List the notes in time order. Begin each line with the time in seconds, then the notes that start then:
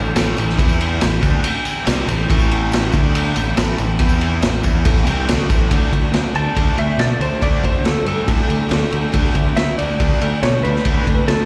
Already playing: A1 A2 E3
0.05 tambourine
0.16 A1 A2 E3 A3, snare, ride, tambourine
0.36 A1 A2 E3, ride, tambourine
0.48 snare, tambourine
0.57 E2 E3 B3 E4, kick, ride, tambourine
0.69 tambourine
0.80 ride
1.01 A1 A2 E3, snare, ride, tambourine
1.13 tambourine
1.21 D2 D3 A3 D4, kick, ride, tambourine
1.41 muted overdriven electric guitar stroke, muted distorted electric guitar stroke, muted fingered electric bass stroke, ride, tambourine
1.57 tambourine
1.65 ride, tambourine
1.85 C2 C3 G3 C4, snare, ride, tambourine
2.08 A1 A2 E3, ride, tambourine
2.19 tambourine
2.28 A1 A2 E3 A3, kick, ride, tambourine
2.39 tambourine
2.51 ride
2.72 snare, ride, tambourine
2.82 tambourine
2.91 D2 D3 A3 D4, kick, ride, tambourine
3.14 ride, tambourine
3.25 tambourine
3.35 A1 A2 E3, ride, tambourine
3.56 A1 A2 E3 A3, snare, ride, tambourine
3.68 tambourine
3.78 A1 A2 E3, ride, tambourine
3.90 tambourine
3.99 E2 E3 B3 E4, kick, ride, tambourine
4.09 tambourine
4.21 ride, tambourine
4.42 A1 A2 E3, snare, ride, tambourine
4.53 tambourine
4.63 E2 E3 B3 E4, kick, ride, tambourine
4.83 A1 A2 E3 A3, kick, ride, tambourine
4.97 tambourine
5.05 C2 C3 G3 C4, ride, tambourine
5.18 tambourine
5.26 D2 D3 A3 D4, snare, ride, tambourine
5.49 A1 A2 E3 A3, kick, ride, tambourine
5.70 D2 D3 A3 D4 F#4, kick, ride
5.92 D2 D3 A3 D4 F#4, kick, ride
6.02 A3 D4 F#4
6.12 D2 D3 A3 D4 F#4, snare, ride
6.34 D2 D3 A3 A5, ride
6.46 A3 D4 F#4
6.55 D2 D3 A3 D4, kick, ride
6.66 A3 D4 F#4
6.76 D2 D3 A3 D4 E5, ride
6.81 F#4
6.98 B2 D3 A3 D4 D5, snare, ride
7.02 F#4
7.19 D2 D3 A3 C5, ride
7.24 D4 F#4
7.33 A3 D4 F#4
7.41 D2 D3 A3 D4 F#4 D5, kick, ride
7.63 D2 D3 A3 D4 F#4 C5, kick, ride
7.74 A3 D4 F#4
7.84 D2 D3 A3 D4 F#4 A4, snare, ride
8.06 G2 D3 A3 A4, ride
8.14 A3 D4 F#4
8.27 A2 D3 A3 D4, kick, ride
8.37 A3 D4 F#4
8.48 D2 D3 A3 D4 F#4, ride
8.69 D2 D3 A3 D4 F#4, snare, ride
8.90 D2 D3 A3 D4 F#4, ride
9.02 A3 D4 F#4
9.12 D2 D3 A3 D4 F#4, kick, ride
9.34 D2 D3 A3 D4 F#4, kick, ride
9.47 A3 D4 F#4
9.56 D2 D3 A3 D4 F#4 E5, snare, ride
9.78 D2 D3 A3 D5, ride
9.91 A3 D4 F#4
10.00 D2 D3 A3 D4, kick, ride
10.14 A3 D4 F#4
10.20 D2 D3 A3 D4, ride
10.24 F#4
10.43 B2 D3 A3 D4 F#4 C#5, snare, ride
10.63 D2 D3 A3 D4 F#4 B4, ride
10.74 A3 D4 F#4, snare
10.85 D2 D3 A3 D4 F#4, kick, ride
11.07 D2 D3 A3 D4 F#4, kick, ride
11.17 A3 D4 F#4
11.28 D2 D3 A3 D4 F#4 A4, snare, ride